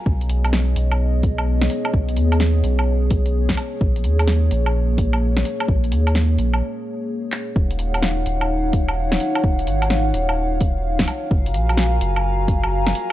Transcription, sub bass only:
X:1
M:4/4
L:1/8
Q:"Swing 16ths" 1/4=128
K:Ebm
V:1 name="Sub bass" clef=bass
=B,,,3 B,,,4 z | =B,,, ^D,,2 B,,,4 z | B,,, E,,2 B,,,4 z | B,,, E,,2 B,,, z4 |
E,,,3 E,,,4 z | E,,, A,,,2 E,,,4 z | G,,, B,,,2 G,,,4 z |]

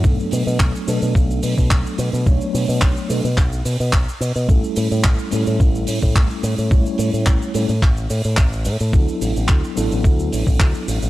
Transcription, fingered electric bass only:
X:1
M:4/4
L:1/16
Q:1/4=108
K:Bm
V:1 name="Fingered electric bass" clef=bass
B,,, z B,, B,, B,,, z B,, B,, B,,,2 B,, B,, B,,, z B,, B,, | B,,, z B,, B,, B,,, z B,, B,, B,,,2 B,, B,, B,,, z B,, B,, | A,,, z A,, A,, A,,, z A,, A,, A,,,2 A,, A,, A,,, z A,, A,, | A,,, z A,, A,, A,,, z A,, A,, A,,,2 A,, A,, A,,,2 A,, A,, |
D,, z A,,, A,,, D,, z A,,, A,,, D,,2 A,,, A,,, D,, z A,,, A,,, |]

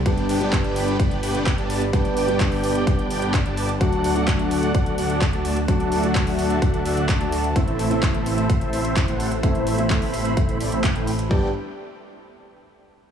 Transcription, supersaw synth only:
X:1
M:4/4
L:1/16
Q:1/4=128
K:G
V:1 name="Supersaw synth"
[B,DGdg]2 [B,DGdg]3 [B,DGdg]3 [B,DGd]2 [B,DGdg]3 [B,DGda]2 z | [B,DGdg]2 [B,DGdg]3 [B,DGdg]3 [B,DGg]2 [B,DGdg]3 [B,DGda]2 z | [A,DFdf]2 [A,DFdf]3 [A,DFdf]3 [DFf]2 [A,DFdf]3 [A,DFda]2 z | [A,DFdf]2 [A,DFdf]3 [A,DFdf]3 [A,DFdf]2 [A,DFdf]3 [A,DFda]2 z |
[A,CEce]2 [A,CEce]3 [A,CEce]3 [A,CEce]2 [A,CEce]3 [A,CEcf]2 z | [A,CEce]2 [A,CEce]3 [A,CEce]3 [A,CEce]2 [A,CEcd] [A,CEce]2 [A,CEcg] z2 | [B,DGdg]2 z12 z2 |]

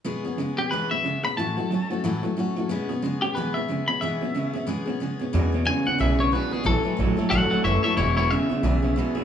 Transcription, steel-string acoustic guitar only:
X:1
M:4/4
L:1/8
Q:"Swing" 1/4=182
K:E
V:1 name="Steel-string acoustic guitar"
[E,G,B,CG] [B,CG] [G,B,CG] [B,CG] [E,G,B,CG] [B,CG] [G,B,CG] [B,CG] | [A,,E,F,A,CF] [F,A,CF] [F,A,CF] [F,A,CF] [A,,E,F,A,CF] [F,A,CF] [F,A,CF] [F,A,CF] | [E,G,B,CG] [B,CG] [G,B,CG] [B,CG] [E,G,B,CG] [B,CG] [G,B,CG] [B,CG] | [E,G,B,CG] [B,CG] [G,B,CG] [B,CG] [E,G,B,CG] [B,CG] [G,B,CG] [B,CG] |
[E,G,B,CG] [B,CG] [G,B,CG] [B,CG] [E,G,B,CG] [B,CG] [G,B,CG] [B,CG] | [A,,E,F,A,CA] [F,A,CA] [F,A,CA] [F,A,CA] [A,,E,F,A,CA] [F,A,CA] [F,A,CA] [F,A,CA] | [E,G,B,CG] [B,CG] [G,B,CG] [B,CG] [E,G,B,CG] [B,CG] [G,B,CG] [B,CG] |]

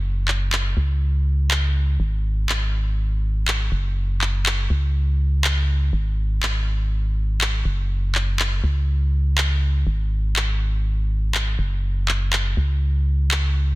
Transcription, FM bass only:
X:1
M:4/4
L:1/8
Q:"Swing 16ths" 1/4=122
K:Db
V:1 name="FM bass" clef=bass
G,,,3 D,,4- D,, | A,,,6- A,,, G,,,- | G,,,3 D,,4- D,, | A,,,6- A,,, G,,,- |
G,,,3 D,,4- D,, | A,,,6- A,,, G,,,- | G,,,3 D,,4- D,, |]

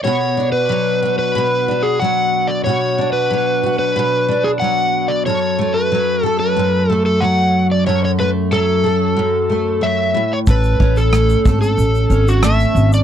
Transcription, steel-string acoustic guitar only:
X:1
M:4/4
L:1/8
Q:1/4=92
K:Bdor
V:1 name="Steel-string acoustic guitar"
[B,,F] D F, F B,, D F,2 | [B,,F] D F, F B,, D F,2 | [F,,A] A, F, A F,, A, F,2 | [F,,A] A, F, A F,, A, F, A,, |
[A,,A] C A, A2 C A,2 |]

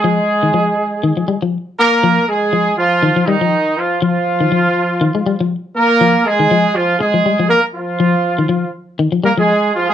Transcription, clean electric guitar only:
X:1
M:4/4
L:1/16
Q:"Swing 16ths" 1/4=121
K:Ebmix
V:1 name="Clean electric guitar" clef=bass
F,2 z E, F,2 z2 E, F, G, F,2 z3 | F,2 z2 F,2 z2 E, F, G, F,2 z3 | F,2 z E, F,2 z2 E, A, G, F,2 z3 | F,2 z E, F,2 z3 F, G, F,2 z3 |
F,2 z E, F,2 z2 E, F, G, F,2 z3 |]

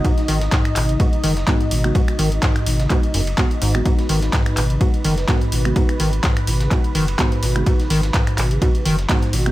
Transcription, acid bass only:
X:1
M:4/4
L:1/16
Q:"Swing 16ths" 1/4=126
K:G#m
V:1 name="Acid bass" clef=bass
G,, z D, z G,,2 B,, C, G,, z D, z G,,2 B,, C, | G,, z D, z G,,2 B,, C, G,, z F,, z G,, z G,, B,, | G,, z D, z G,,2 B,, C, G,, z D, z G,,2 B,, C, | G,, z D, z G,,2 B,, C, G,, z D, z G,,2 B,, C, |
G,, z D, z G,,2 B,, C, G,, z D, z G,,2 B,, C, |]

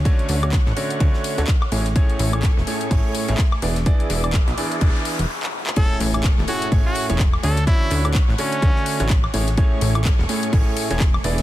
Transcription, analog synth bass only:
X:1
M:4/4
L:1/16
Q:"Swing 16ths" 1/4=126
K:A
V:1 name="Analog synth bass" clef=bass
z2 D,,2 z A,,, z2 D,, z2 D,, z2 A,,,2 | z2 A,,,2 z E,,, z2 A,,, z2 A,,, z2 E,,,2 | z2 E,,,2 z B,,, z2 E,,, z2 E,,, z4 | z2 A,,,2 z E,,, z2 A,,, z2 E,,,2 z D,,2 |
z2 D,,2 z A,,, z2 D,, z2 A,,,2 z A,,,2 | z2 A,,,2 z E,,, z2 A,,, z2 E,,,2 z E,,,2 |]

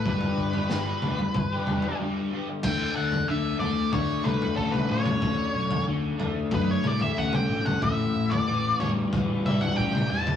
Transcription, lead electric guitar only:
X:1
M:4/4
L:1/16
Q:1/4=93
K:D
V:1 name="Lead electric guitar"
B12 z4 | g2 f2 e2 d2 c2 B2 A B c2- | c4 z4 B c d e f g2 f | e3 d3 c2 z2 e f g2 a2 |]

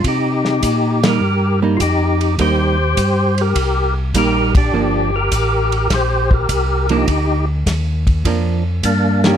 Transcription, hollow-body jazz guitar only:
X:1
M:4/4
L:1/8
Q:"Swing" 1/4=102
K:Gm
V:1 name="Hollow-body jazz guitar"
z3 [G,B,E] z [G,B,E] z2 | [G,B,E] z4 z [G,B,E] z | [F,B,D] z6 [F,B,D] | z4 [F,B,D] z2 [E,B,^CG] |]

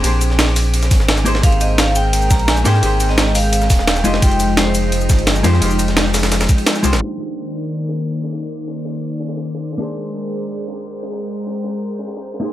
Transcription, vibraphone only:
X:1
M:4/4
L:1/16
Q:1/4=172
K:Cm
V:1 name="Vibraphone"
z16 | f2 e2 f2 g4 b2 a2 g2- | g3 e3 f8 e2 | g4 c8 z4 |
z16 | z16 | z16 | z16 |
z16 |]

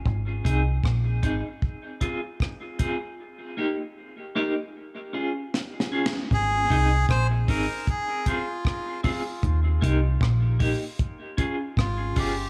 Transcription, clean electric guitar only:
X:1
M:4/4
L:1/8
Q:1/4=77
K:Ab
V:1 name="Clean electric guitar"
z [CEA] z [CEA] z [CFA] z [CFA] | z [B,EG] z [B,EG] z [DFA] z [DFA] | z [CEA] z [CEA] z [CFA] z [CFA] | z [B,EG] z [B,EG] z [DFA] z [DFA] |]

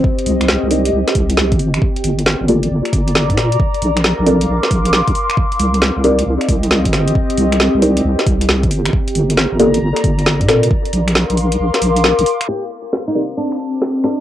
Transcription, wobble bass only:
X:1
M:4/4
L:1/16
Q:"Swing 16ths" 1/4=135
K:Cm
V:1 name="Wobble bass" clef=bass
z2 C,,3 C,,3 C,, z C,,3 G,,,3 | z2 G,,,3 G,,,3 G,,, z G,,,3 B,,3 | z2 B,,,3 B,,,3 B,,, z B,,,3 B,,, z2 | z2 C,,3 C,,3 C,, z C,,3 G,,,3 |
z2 C,,3 C,,3 C,, z C,,3 G,,,3 | z2 G,,,3 G,,,3 G,,, z G,,,3 B,,3 | z2 B,,,3 B,,,3 B,,, z B,,,3 B,,, z2 | z16 |]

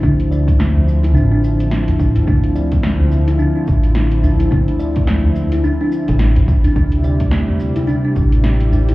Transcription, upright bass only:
X:1
M:4/4
L:1/16
Q:"Swing 16ths" 1/4=107
K:Dm
V:1 name="Upright bass" clef=bass
D,,8 A,,,6 A,,, z | D,,8 z2 A,,,6 | D,,8 z3 A,,,3 A,,, z | D,,8 z2 A,,,6 |]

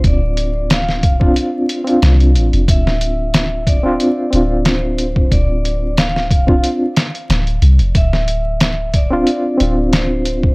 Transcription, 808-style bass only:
X:1
M:4/4
L:1/16
Q:"Swing 16ths" 1/4=91
K:Dm
V:1 name="808-style bass" clef=bass
D,,,8 z4 C,,2 A,,, F,,, | D,,,8 z2 D,,,6 | D,,,8 z4 D,,,2 C,, F,,, | D,,,8 z2 D,,,6 |]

